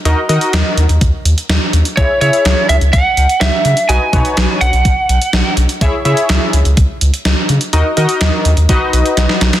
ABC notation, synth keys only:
X:1
M:4/4
L:1/8
Q:1/4=125
K:C#dor
V:1 name="Synth keys"
[DFAd] [DFAd]2 z4 z | [EGce] [EGce]2 z4 z | [DFBd] [DFBc]2 z4 z | [EGce] [EGce]2 z4 z |
[DFAd] [DFAd]2 z [DFBd]3 z |]